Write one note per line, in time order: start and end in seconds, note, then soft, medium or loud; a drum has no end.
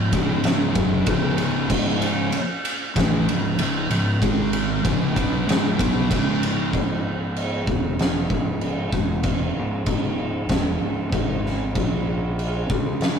0.00 0.10 C#1 medium
0.12 0.72 C#1 medium
0.12 0.75 C#2 loud
0.12 0.75 G#2 loud
0.12 0.74 C#3 loud
0.12 kick loud
0.12 ride medium
0.44 snare loud
0.44 ride loud
0.75 1.05 F#1 loud
0.75 1.06 F#2 loud
0.75 1.06 C#3 medium
0.75 1.06 F#3 loud
0.75 kick loud
0.75 ride medium
1.06 1.66 C#1 loud
1.06 1.68 C#2 medium
1.06 1.69 G#2 loud
1.06 1.69 C#3 loud
1.06 kick loud
1.06 ride loud
1.38 ride medium
1.70 2.29 C#1 loud
1.70 2.32 C#2 medium
1.70 2.32 G#2 loud
1.70 2.32 C#3 loud
1.70 kick loud
1.70 crash medium
2.02 ride medium
2.32 muted distorted electric guitar stroke medium
2.32 muted fingered electric bass stroke soft
2.32 ride loud
2.65 ride medium
2.96 3.25 A1 medium
2.96 3.26 A2 loud
2.96 3.27 E3 medium
2.96 3.27 A3 loud
2.96 kick loud
2.96 snare loud
2.96 ride loud
3.27 3.56 C#1 medium
3.27 3.53 C#2 medium
3.27 3.53 G#2 medium
3.27 ride medium
3.58 3.88 C#1 medium
3.58 3.84 C#2 medium
3.58 3.84 G#2 medium
3.58 ride loud
3.90 4.19 C#1 medium
3.90 4.15 C#2 medium
3.90 4.16 G#2 medium
3.90 ride medium
4.22 4.80 G#1 loud
4.22 4.84 G#2 medium
4.22 4.84 D#3 loud
4.22 4.84 G#3 loud
4.22 kick loud
4.22 ride loud
4.53 ride medium
4.85 5.14 C#1 loud
4.85 5.15 C#2 medium
4.85 5.15 G#2 loud
4.85 5.16 C#3 loud
4.85 kick loud
4.85 ride loud
5.16 5.45 B1 loud
5.16 5.47 B2 medium
5.16 5.47 F#3 loud
5.16 5.47 B3 loud
5.16 kick loud
5.16 ride medium
5.47 5.76 C#1 medium
5.47 5.77 C#2 loud
5.47 5.78 G#2 loud
5.47 5.78 C#3 loud
5.47 snare loud
5.47 ride loud
5.78 6.08 B1 medium
5.78 6.09 B2 medium
5.78 6.09 F#3 loud
5.78 6.09 B3 loud
5.78 kick loud
5.78 ride medium
5.82 snare soft
6.09 6.70 C#1 loud
6.09 6.72 C#2 medium
6.09 6.72 G#2 medium
6.09 6.72 C#3 loud
6.09 kick loud
6.09 ride loud
6.43 ride medium
6.73 7.64 C#1 loud
6.73 kick medium
6.73 crash soft
7.36 crash medium
7.67 8.26 E1 medium
7.67 kick loud
7.99 snare loud
7.99 crash medium
8.30 8.89 C#1 medium
8.30 kick loud
8.61 crash medium
8.92 9.52 E1 medium
8.92 kick loud
8.92 snare soft
9.23 kick loud
9.23 crash medium
9.56 9.85 C#1 medium
9.86 10.46 C#1 loud
9.86 kick loud
9.86 crash medium
10.49 10.79 E1 medium
10.49 kick loud
10.49 snare loud
10.49 crash medium
10.79 11.10 C#1 medium
11.12 11.71 G#1 loud
11.12 kick loud
11.12 crash medium
11.46 snare soft
11.75 12.65 A#1 loud
11.75 kick loud
11.75 crash medium
12.39 crash medium
12.69 13.19 C#2 medium
12.69 kick loud
13.01 snare loud
13.01 crash medium